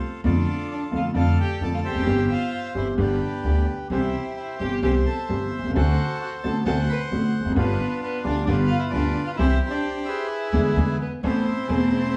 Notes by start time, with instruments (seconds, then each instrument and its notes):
Already playing: bandoneon F4 A4
0.24 upright bass F2, upright piano F2 D3 F3 A3 F4, violin D4, bandoneon F4 A4 D5
0.71 violin D4, bandoneon D5
0.91 upright piano F2 D3 F3 A3 F4, upright bass F2
0.95 violin F4, bandoneon F5
1.14 upright piano F2 D3 F3 A3 F4, upright bass F2, violin F4, bandoneon A4 D5
1.19 bandoneon F5
1.41 violin G4, bandoneon G5
1.60 upright bass F2, upright piano F2 D3 F3 A3 F4, violin A4, bandoneon A5
1.74 violin F4, bandoneon F5
1.85 violin G4, bandoneon C5 E5 G5
1.89 upright bass E1, upright piano E2
1.94 upright bass F1, upright piano F2
2.00 upright bass F#1, upright piano F#2
2.06 upright piano G1 G2 E3 G3 C4 G4, upright bass G1
2.31 violin F4, bandoneon C5 F5
2.75 upright bass G1, upright piano G1 G2 E3 G3 C4 G4, violin E4, bandoneon E5
2.97 upright bass G1, upright piano G1 G2 D3 G3 B3 G4, violin D4, bandoneon G4 B4 D5
3.44 upright bass D2, upright piano D2 D3 G3 B3 G4
3.90 upright bass C2, upright piano C2 C3 E3 G3 C4 G4, violin E4, bandoneon G4 C5 E5
4.37 violin E4, bandoneon E5
4.58 upright bass G1, upright piano G1 G2 E3 G3 C4 G4, violin G4, bandoneon G5
4.81 upright bass C2, upright piano C2 C3 E3 G3 C4 G4, violin G4, bandoneon C5 E5 G5
5.06 violin A4, bandoneon A5
5.29 upright bass G1, upright piano G1 G2 E3 G3 C4 G4
5.57 upright bass B1, upright piano B1
5.64 upright bass C2, upright piano C2
5.69 upright bass C#2, upright piano C#2
5.75 upright piano D2 D3 A3 C4 F#4, upright bass D2, bandoneon A4 C5 F#5
5.79 violin F#4
6.22 violin F#4, bandoneon F#5
6.43 upright piano A1 A2 D3 A3 C4 F#4, upright bass A1, violin A4, bandoneon A5
6.65 upright bass D2, upright piano D2 D3 A3 C4 F#4, violin A4, bandoneon C5 F#5 A5
6.89 violin B4, bandoneon B5
7.11 upright bass A1, upright piano A1 A2 D3 A3 C4 F#4
7.40 upright bass E1, upright piano E2
7.45 upright bass F1, upright piano F2
7.51 upright bass F#1, upright piano F#2
7.56 upright piano G1 G2 D3 G3 B3 F4, upright bass G1, violin B3, bandoneon D4 F4 B4
8.03 violin B3, bandoneon B4
8.24 upright piano D2 D3 G3 B3 F4, upright bass D2, violin D4, bandoneon D5
8.46 upright bass G1, upright piano G1 G2 D3 G3 B3 F4, violin D4, bandoneon F4 B4 D5
8.67 violin F4, bandoneon F5
8.79 violin E4, bandoneon E5
8.90 upright bass D2, upright piano D2 D3 G3 B3 F4, violin D4, bandoneon F4 B4 D5
9.25 violin F4, bandoneon F5
9.36 upright bass C2, upright piano C3 E3 G3, violin E4, bandoneon C5 E5
9.40 bandoneon G4
9.66 violin D4 E4, bandoneon E5
9.70 bandoneon G4 D5
10.06 violin E4, bandoneon G#4 B4 E5
10.53 upright bass E2, upright piano D3 E3 G#3
10.76 upright bass E2, upright piano D3 E3 G#3
11.00 violin B3, bandoneon B4
11.22 upright bass A1, upright piano A1 A2 E3 B3 C4 A4, violin C4, bandoneon C5
11.26 bandoneon E4
11.67 upright piano E1 E2 E3 A3 C4 A4, upright bass E1